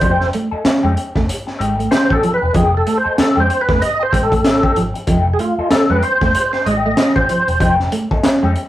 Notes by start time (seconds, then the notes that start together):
Already playing: C5
0.00 F1 F3 A3 D#4 G4, kick, closed hi-hat
0.19 muted clean electric guitar stroke, snare
0.33 A3, muted clean electric guitar stroke, closed hi-hat
0.51 A3 D#4 A4, muted fingered electric bass stroke
0.64 muted fingered electric bass stroke, muted clean electric guitar stroke, snare, closed hi-hat
0.83 F2 G#3 A3 D#4 G4
0.96 muted clean electric guitar stroke, closed hi-hat
1.15 F1 A3, muted clean electric guitar stroke, kick, snare
1.29 muted clean electric guitar stroke, closed hi-hat
1.47 muted clean electric guitar stroke, snare
1.59 G#1 G#3 A3 D#4 G4, closed hi-hat
1.78 A3, muted clean electric guitar stroke, closed hi-hat
1.91 C5, muted clean electric guitar stroke, snare, closed hi-hat
2.09 A1 A3 D#4 G4 A4, kick
2.23 F3, muted clean electric guitar stroke, closed hi-hat
2.34 B4
2.42 E1, muted clean electric guitar stroke
2.53 F1 F3 A3 D#4 G4 G#4, kick, closed hi-hat
2.73 muted clean electric guitar stroke
2.77 A4
2.86 A3, muted clean electric guitar stroke, closed hi-hat
2.98 C5
3.04 A3 D#4 A4, muted fingered electric bass stroke
3.17 A4, muted clean electric guitar stroke, muted fingered electric bass stroke, snare, closed hi-hat
3.36 F2 G#3 A3 D#4 G4
3.40 C5
3.49 muted clean electric guitar stroke, closed hi-hat
3.61 B4
3.68 F1 A3, muted clean electric guitar stroke, kick, snare
3.82 D#5, muted clean electric guitar stroke, closed hi-hat
3.99 C5, muted clean electric guitar stroke
4.12 A1 G#3 A3 D#4 G4, kick, closed hi-hat
4.23 A4
4.31 A3, muted clean electric guitar stroke, kick, closed hi-hat
4.44 G#1, muted clean electric guitar stroke, snare, closed hi-hat
4.63 A3 D#4 G4, kick
4.75 G#1 F3, muted clean electric guitar stroke, closed hi-hat
4.94 muted clean electric guitar stroke, closed hi-hat
5.07 F1 F3 A3 D#4 G4, kick, closed hi-hat
5.27 muted clean electric guitar stroke
5.34 G#4
5.39 A3 F4, muted clean electric guitar stroke, closed hi-hat
5.58 A3 D#4 A4, muted fingered electric bass stroke
5.70 A4, muted fingered electric bass stroke, snare, closed hi-hat
5.90 F2 G#3 A3 D#4 G4 B4
6.03 C5, muted clean electric guitar stroke, closed hi-hat
6.21 F1 A3, muted clean electric guitar stroke, kick, snare
6.35 muted clean electric guitar stroke, closed hi-hat
6.53 C5, muted clean electric guitar stroke, snare
6.66 G#1 G#3 A3 D#4 G4 D#5, closed hi-hat
6.86 A3, muted clean electric guitar stroke
6.97 muted fingered electric bass stroke, muted clean electric guitar stroke, snare, closed hi-hat
7.16 A1 A3 D#4 G4 C5, kick
7.29 F3, muted clean electric guitar stroke, closed hi-hat
7.48 E1, muted clean electric guitar stroke, closed hi-hat
7.60 F1 F3 A3 D#4 G4, kick, closed hi-hat
7.80 muted clean electric guitar stroke, snare
7.92 A3, muted clean electric guitar stroke, closed hi-hat
8.11 A3 D#4 A4, muted fingered electric bass stroke, kick
8.23 muted clean electric guitar stroke, muted fingered electric bass stroke, snare, closed hi-hat
8.43 F2 G#3 A3 D#4 G4
8.56 muted clean electric guitar stroke, closed hi-hat